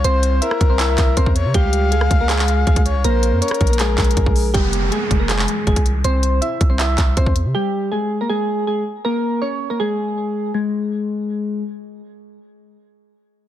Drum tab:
HH |x-----x-----x-----x-----x-----x-----x-----x-----|x-----x-----x-----x-----x-----x-----x--x--x-----|x-----x-----x-x-x-x-x-x-x-----x-x-x-x-----o-----|x-----x-----x-----x-----x-----x-----x--x--x-----|
CP |------------------------x-----x-----------------|------------------------x--x--------------------|------------------------x-----x-----------------|------------------------x--x--------------------|
SD |---------------r--------r-----------------------|---------------r--------r-----------------------|---------------r--------------------------------|------------------------------------------------|
BD |------------------o-----------o-----o--o--------|o-----------------o-----------------o--o--------|------------------o-----------o-----o--o--------|o-----------------o-----------------o--o--------|

HH |x-----x-----x-----x-----x-----x-----x-----x-----|------------------------------------------------|------------------------------------------------|------------------------------------------------|
CP |------------------------x-----x-----------------|------------------------------------------------|------------------------------------------------|------------------------------------------------|
SD |------------------------------------------------|------------------------------------------------|------------------------------------------------|------------------------------------------------|
BD |------------------o-----------o-----o--o--------|------------------------------------------------|------------------------------------------------|------------------------------------------------|

HH |------------------------------------------------|
CP |------------------------------------------------|
SD |------------------------------------------------|
BD |------------------------------------------------|